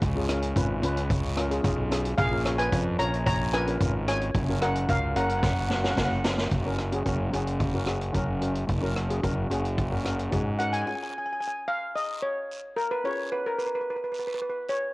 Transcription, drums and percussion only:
0.02 kick, closed hi-hat, long guiro
0.29 cross-stick, closed hi-hat
0.42 closed hi-hat
0.56 kick, closed hi-hat, short guiro
0.83 closed hi-hat
0.97 closed hi-hat
1.10 kick, closed hi-hat, short guiro, long guiro
1.37 cross-stick, closed hi-hat
1.51 closed hi-hat
1.64 kick, closed hi-hat, short guiro
1.92 cross-stick, closed hi-hat, short guiro
2.05 closed hi-hat
2.18 kick, closed hi-hat, long guiro
2.45 cross-stick, closed hi-hat
2.59 closed hi-hat
2.72 kick, closed hi-hat, short guiro
3.00 closed hi-hat
3.14 closed hi-hat
3.27 kick, closed hi-hat, short guiro, long guiro
3.54 cross-stick, closed hi-hat
3.67 closed hi-hat
3.81 kick, closed hi-hat, short guiro
4.08 cross-stick, closed hi-hat, short guiro
4.22 closed hi-hat
4.35 kick, closed hi-hat, long guiro
4.62 cross-stick, closed hi-hat
4.75 closed hi-hat
4.89 kick, closed hi-hat, short guiro
5.16 closed hi-hat
5.30 closed hi-hat
5.43 kick, snare, short guiro, long guiro
5.70 snare
5.84 snare
5.97 kick, snare, short guiro
6.24 snare, short guiro
6.38 snare
6.51 kick, closed hi-hat, long guiro
6.78 cross-stick, closed hi-hat
6.92 closed hi-hat
7.06 kick, closed hi-hat, short guiro
7.33 closed hi-hat, short guiro
7.47 closed hi-hat
7.60 kick, closed hi-hat, long guiro
7.87 cross-stick, closed hi-hat, short guiro
8.01 closed hi-hat
8.14 kick, closed hi-hat, short guiro
8.42 closed hi-hat
8.55 closed hi-hat
8.69 kick, closed hi-hat, long guiro
8.96 cross-stick, closed hi-hat
9.10 closed hi-hat
9.23 kick, closed hi-hat, short guiro
9.51 closed hi-hat, short guiro
9.65 closed hi-hat
9.78 kick, closed hi-hat, long guiro
10.06 cross-stick, closed hi-hat, short guiro
10.19 closed hi-hat
10.32 kick, closed hi-hat, short guiro
10.60 closed hi-hat
10.74 closed hi-hat
10.87 long guiro
11.42 short guiro
11.97 short guiro, long guiro
12.51 short guiro
12.78 short guiro
13.05 long guiro
13.59 short guiro
14.14 short guiro, long guiro
14.69 short guiro

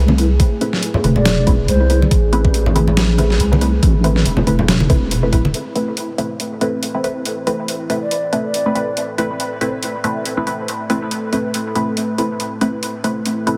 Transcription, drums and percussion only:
0.08 high conga
0.18 closed hi-hat
0.40 kick, closed hi-hat
0.61 closed hi-hat
0.73 snare
0.83 closed hi-hat
0.94 low conga
1.04 closed hi-hat, high conga
1.16 low conga
1.25 snare, closed hi-hat
1.47 kick, closed hi-hat
1.68 closed hi-hat
1.90 closed hi-hat
2.02 high conga
2.11 kick, closed hi-hat
2.33 closed hi-hat
2.45 kick
2.54 closed hi-hat
2.66 low conga
2.76 closed hi-hat, high conga
2.88 low conga
2.97 snare, closed hi-hat
3.18 closed hi-hat, high conga
3.30 snare
3.40 closed hi-hat
3.53 high conga
3.61 closed hi-hat
3.83 kick, closed hi-hat
4.04 closed hi-hat
4.16 snare
4.26 closed hi-hat
4.37 low conga
4.47 closed hi-hat, high conga
4.59 low conga
4.68 snare, closed hi-hat
4.80 high conga
4.90 kick, closed hi-hat
5.11 closed hi-hat
5.33 kick, closed hi-hat
5.45 high conga
5.54 closed hi-hat
5.76 closed hi-hat
5.97 closed hi-hat
6.18 closed hi-hat
6.40 closed hi-hat
6.61 closed hi-hat
6.83 closed hi-hat
7.04 closed hi-hat
7.25 closed hi-hat
7.47 closed hi-hat
7.68 closed hi-hat
7.90 closed hi-hat
8.11 closed hi-hat
8.33 closed hi-hat
8.54 closed hi-hat
8.75 closed hi-hat
8.97 closed hi-hat
9.18 closed hi-hat
9.40 closed hi-hat
9.61 closed hi-hat
9.83 closed hi-hat
10.04 closed hi-hat
10.25 closed hi-hat
10.47 closed hi-hat
10.68 closed hi-hat
10.90 closed hi-hat
11.11 closed hi-hat
11.33 closed hi-hat
11.54 closed hi-hat
11.75 closed hi-hat
11.97 closed hi-hat
12.18 closed hi-hat
12.40 closed hi-hat
12.61 closed hi-hat
12.83 closed hi-hat
13.04 closed hi-hat
13.26 closed hi-hat
13.47 closed hi-hat

